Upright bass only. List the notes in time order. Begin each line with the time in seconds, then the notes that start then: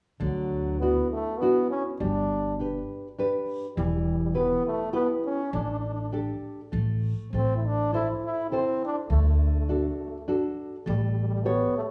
0.20 D2
2.00 G1
3.77 E1
5.53 A1
6.73 A1
7.33 A1
9.10 D2
10.87 A1